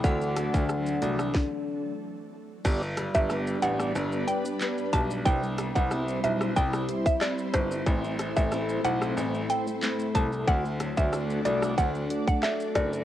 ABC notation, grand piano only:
X:1
M:4/4
L:1/16
Q:1/4=92
K:G
V:1 name="Grand piano" clef=bass
D,,3 D,,3 C,,2 z8 | G,,,3 G,,,3 A,,,2 G,,,2 z4 B,,,2 | C,,3 C,,3 B,,,2 C,,2 z4 G,,,2 | A,,,3 A,,,3 B,,,2 A,,,2 z4 C,,2 |
D,,3 D,,3 C,,2 D,,2 z4 F,,,2 |]